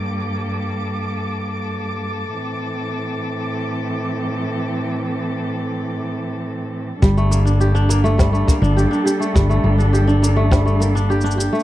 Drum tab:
SH |------------------------------------------------|------------------------------------------------|------------------------------------------------|x--x--x--x--x--x--x--x--x--x--x--x--x--x--x--x--|
SD |------------------------------------------------|------------------------------------------------|------------------------------------------------|------------------------o-----------------------|
BD |------------------------------------------------|------------------------------------------------|------------------------------------------------|o-----------------------o-----o-----------------|

SH |x--x-----x--x--x--x-----x--x--x--x--x-xxx-x--xx-|
SD |------------------------o-----------------------|
BD |o-----------------------o-----------------------|